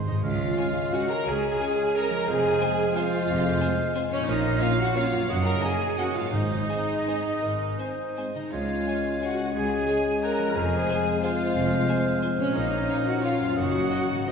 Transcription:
Already playing: harp G#2 G#4 C5, cor anglais C5
0.04 timpani G#2, harp C#3, viola section D#4, flute section D#5, violin section D#5
0.10 timpani G#2, harp G#3
0.14 harp G#4
0.19 harp C#5
0.23 cello section C#2, double bass section C#2, timpani C#3, bassoon G#3, viola section F4, clarinet C#5, cor anglais F5, flute section F5, violin section F5
0.57 french horn section G#3 C#4, violin section C#5 G#5
0.93 french horn section G#3 C#4, viola section F#4, violin section C#5 F#5 G#5, flute section F#5
1.09 viola section A#4, flute section A#5, violin section A#5
1.26 cello section C#2, double bass section C#2, bassoon G#3, viola section G#4, clarinet C#5, cor anglais F5, violin section G#5, flute section G#5
1.59 french horn section G#3 C#4, violin section C#5 G#5
1.95 french horn section G#3 C#4, viola section A#4, violin section C#5 G#5 A#5, flute section A#5
2.10 harp F3
2.14 harp G#3
2.19 harp F4
2.24 harp C5, cor anglais F5
2.28 double bass section F1, cello section F2, bassoon G#3, viola section G#4, clarinet C5, flute section G#5, violin section G#5
2.60 french horn section G#3 C4, violin section C5 G#5
2.95 french horn section G#3 C4, bassoon G#3, viola section F4, clarinet C5, violin section C5 F5 G#5, cor anglais F5, flute section F5
3.28 double bass section F1, cello section F2
3.60 french horn section G#3 C4, violin section C5 G#5
3.95 french horn section G#3 C4, violin section C5 G#5
4.09 harp A#2, viola section C#4, violin section C#5, flute section C#5
4.14 harp A#3
4.18 harp F4
4.23 harp C#5, clarinet C#5
4.27 double bass section A#1, cello section A#2, bassoon A#3, viola section D#4, flute section D#5, violin section D#5, cor anglais F5
4.60 french horn section A#3 C#4, viola section F4, violin section C#5 F5, flute section F5
4.79 viola section F#4, flute section F#5, violin section F#5
4.95 french horn section A#3 C#4, bassoon A#3, viola section F4, violin section C#5 F5, clarinet C#5, cor anglais F5, flute section F5
5.11 harp F#2
5.15 harp A#3
5.20 harp D#4
5.24 harp C#5, clarinet C#5, flute section F#5
5.29 double bass section F#1, cello section F#2, bassoon A#3, viola section F#4, cor anglais D#5, violin section F#5
5.45 viola section A#4, flute section A#5, violin section A#5
5.61 french horn section A#3 C#4, viola section G#4, violin section C#5 D#5 G#5, flute section G#5
5.97 french horn section A#3 C#4, bassoon A#3, viola section F#4, violin section C#5 D#5 F#5, clarinet C#5, cor anglais D#5, flute section F#5
6.15 harp G#2, viola section F4, flute section F5, violin section F5
6.20 harp G#3
6.24 harp G#4
6.28 harp C5
6.33 double bass section G#1, cello section G#2, timpani G#2, bassoon G#3, viola section D#4, clarinet C5, violin section D#5, cor anglais D#5, flute section D#5
6.68 french horn section G#3 C4, clarinet G#4, violin section C5 G#5
7.07 french horn section G#3 C4, violin section C5 G#5
7.42 double bass section G#1, cello section G#2, clarinet A#4
7.78 french horn section G#3 C4, clarinet C5, violin section C5 G#5
8.16 french horn section G#3 C4, violin section C5 G#5
8.34 harp C#3, viola section D#4, violin section D#5, flute section D#5
8.39 harp G#3
8.43 harp G#4
8.48 cello section C#2, harp C#5, violin section F5
8.52 double bass section C#2, bassoon G#3, french horn section G#3 C#4, viola section F4, clarinet C#5, flute section F5, cor anglais G#5
8.87 violin section C#5 G#5
9.21 viola section F#4, violin section C#5 F#5 G#5, flute section F#5
9.54 double bass section C#2, cello section C#2, bassoon G#3, viola section G#4, clarinet C#5, violin section G#5, cor anglais G#5, flute section G#5
9.87 violin section C#5 G#5
10.23 viola section A#4, violin section C#5 G#5 A#5, cor anglais F#5, flute section A#5
10.38 harp F3
10.43 harp G#3
10.47 harp F4
10.52 french horn section C4, harp C5
10.56 double bass section F1, cello section F2, bassoon G#3, viola section G#4, clarinet C5, cor anglais F5, violin section G#5, flute section G#5
10.89 violin section C5 G#5
11.23 bassoon G#3, viola section F4, clarinet C5, violin section C5 F5 G#5, flute section F5, cor anglais F5
11.56 double bass section F1, cello section F2
11.88 violin section C5 G#5
12.22 violin section C5 G#5
12.37 harp A#2, viola section C#4, violin section C#5, flute section C#5
12.42 harp A#3
12.46 harp F4
12.51 harp C#5
12.55 double bass section A#1, cello section A#2, french horn section F3 C#4, bassoon A#3, viola section D#4, clarinet C#5, violin section D#5, flute section D#5, cor anglais F5
12.88 violin section C#5 F5
13.07 viola section F#4, violin section F#5, flute section F#5
13.23 bassoon A#3, viola section F4, clarinet C#5, violin section C#5 F5, cor anglais F5, flute section F5
13.39 harp F#2
13.43 harp A#3
13.48 harp D#4
13.52 harp C#5
13.56 double bass section F#1, cello section F#2, french horn section D#3, bassoon A#3, viola section F#4, clarinet C#5, cor anglais D#5, violin section F#5, flute section F#5
13.91 violin section C#5 D#5
14.09 harp G#2
14.14 harp G#3
14.18 harp D#4
14.22 french horn section C4, harp C5, clarinet C5
14.27 double bass section G#1, cello section G#2, bassoon G#3, viola section D#4, violin section C5 D#5, cor anglais D#5, flute section D#5

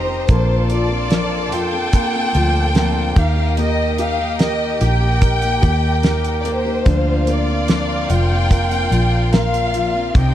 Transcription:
Already playing: fingered electric bass F1, grand piano C3 D#4 G4, string section G4 D#5 C6 D#6, violin section A#4 C5 A#5
0.07 steel-string acoustic guitar C4 D#4 G4
0.27 fingered electric bass A#1, steel-string acoustic guitar A#2 F3 C4 D4 F4, string section A#3 F5 D6, grand piano A#3, violin section A4 A5, kick, closed hi-hat
0.70 grand piano F4, violin section D5, closed hi-hat
0.89 steel-string acoustic guitar C4 D4 F4
1.10 steel-string acoustic guitar A#2 F3 C4 D4 F4, grand piano A#4, snare, closed hi-hat
1.51 fingered electric bass F2, steel-string acoustic guitar F3 C4 D4 F4, grand piano F4, violin section G5, closed hi-hat
1.71 steel-string acoustic guitar C4 D4 F4
1.93 grand piano A#3, kick, closed hi-hat
2.12 steel-string acoustic guitar C4 D4 F4
2.33 fingered electric bass D2, steel-string acoustic guitar F3 C4 D4 F4, grand piano F4, closed hi-hat
2.74 steel-string acoustic guitar A#2 F3 C4 D4 F4, grand piano A#3, snare, closed hi-hat
3.15 fingered electric bass D#2, steel-string acoustic guitar D#3 A#3 D#4 G4, grand piano D#3, violin section G4 F5 G5, string section D#5 G5 D#6, kick, closed hi-hat
3.36 steel-string acoustic guitar A#3 D#4 G4
3.57 steel-string acoustic guitar D#3 A#3 D#4 G4, grand piano A#3, violin section D#5, closed hi-hat
3.98 grand piano G4, violin section F5, closed hi-hat
4.18 steel-string acoustic guitar A#3 D#4 G4
4.39 steel-string acoustic guitar D#3 A#3 D#4 G4, grand piano A#4, violin section D#5, snare, closed hi-hat
4.80 fingered electric bass A#1, steel-string acoustic guitar D#3 A#3 D#4 G4, grand piano G4, string section D6, closed hi-hat
4.84 violin section G5
5.00 steel-string acoustic guitar A#3 D#4 G4
5.21 grand piano A#4, kick, closed hi-hat
5.42 steel-string acoustic guitar A#3 D#4 G4, closed hi-hat
5.62 fingered electric bass D#2, steel-string acoustic guitar D#3 A#3 D#4 G4, grand piano G4, kick, closed hi-hat
6.03 steel-string acoustic guitar D#3 A#3 D#4 G4, grand piano A#4, snare, closed hi-hat
6.24 closed hi-hat
6.40 steel-string acoustic guitar D#3, violin section D5
6.45 grand piano A#3, steel-string acoustic guitar A#3 D#4 G4, violin section C5, closed hi-hat
6.65 steel-string acoustic guitar A#3 D#4 G4
6.85 fingered electric bass D2, steel-string acoustic guitar D3 F3 A#3 C4 F4, grand piano D3, violin section F4 F5, string section D5 F5 C6, kick, closed hi-hat
7.27 grand piano A#3, violin section D5, closed hi-hat
7.47 steel-string acoustic guitar A#3 C4 F4
7.68 steel-string acoustic guitar D3 F3 A#3 C4 F4, grand piano D4, snare, closed hi-hat
8.09 fingered electric bass F1, steel-string acoustic guitar F3 A#3 C4 F4, grand piano F4, violin section G5, closed hi-hat
8.29 steel-string acoustic guitar A#3 C4 F4
8.51 grand piano A#4, kick, closed hi-hat
8.70 steel-string acoustic guitar A#3 C4 F4, closed hi-hat
8.90 fingered electric bass A#1, steel-string acoustic guitar F3 A#3 C4 F4, grand piano F4, closed hi-hat
9.32 steel-string acoustic guitar D3 F3 A#3 C4 F4, grand piano A#4, violin section F5, snare, closed hi-hat
9.54 closed hi-hat
9.73 steel-string acoustic guitar F3 A#3 C4 F4, grand piano F4, closed hi-hat
9.93 steel-string acoustic guitar A#3 C4 F4
10.14 fingered electric bass C2, steel-string acoustic guitar C3 D#3 C4 D#4 G4, grand piano C3, violin section D#4 D#5, string section G4 C5 D#5, kick, closed hi-hat
10.18 violin section G5

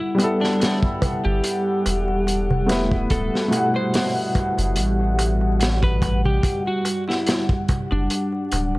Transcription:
Already playing: felt piano G3 B3 E4 F#4, analog synth pad G3 F#5
0.00 electric slide guitar E4
0.15 felt piano G3 B3, darbuka tek
0.19 felt piano E4 A4, closed hi-hat
0.40 electric slide guitar D4, snare, darbuka tek
0.60 snare, closed hi-hat, darbuka tek
0.82 kick, darbuka tek
1.02 kick, closed hi-hat, darbuka tek, darbuka dum
1.24 sub bass G1, electric slide guitar G4, darbuka tek
1.44 closed hi-hat, darbuka tek
1.66 darbuka tek
1.86 sub bass E1, closed hi-hat, darbuka tek
2.08 darbuka tek
2.27 closed hi-hat, darbuka tek
2.50 darbuka tek, darbuka dum
2.66 felt piano A3 B3 E4, closed hi-hat, darbuka tek
2.71 felt piano B4, snare
2.92 kick, darbuka tek
3.10 sub bass D1, electric slide guitar A4, kick, closed hi-hat, darbuka tek
3.34 snare, darbuka tek
3.48 felt piano B2 A3
3.52 felt piano E4, closed hi-hat, darbuka tek
3.57 felt piano F#5
3.74 electric slide guitar C5, darbuka tek
3.94 snare, open hi-hat, darbuka tek
4.16 darbuka tek
4.35 kick, closed hi-hat, darbuka tek
4.58 sub bass F#1, closed hi-hat, darbuka tek
4.76 sub bass A1, closed hi-hat, darbuka tek
5.00 darbuka tek
5.19 closed hi-hat, darbuka tek
5.41 darbuka tek
5.60 snare, closed hi-hat, darbuka tek
5.82 electric slide guitar B4, kick, darbuka tek
6.02 kick, closed hi-hat, darbuka tek
6.25 electric slide guitar G4, darbuka tek, darbuka dum
6.43 kick, closed hi-hat, darbuka tek
6.66 electric slide guitar F#4, darbuka tek
6.85 closed hi-hat, darbuka tek
7.08 electric slide guitar E4, snare, darbuka tek
7.27 snare, closed hi-hat, darbuka tek
7.49 kick, darbuka tek
7.68 kick, closed hi-hat, darbuka tek, darbuka dum
7.91 sub bass F#1, electric slide guitar D4, darbuka tek
8.10 closed hi-hat, darbuka tek
8.32 darbuka tek
8.52 sub bass D1, closed hi-hat, darbuka tek
8.75 darbuka tek

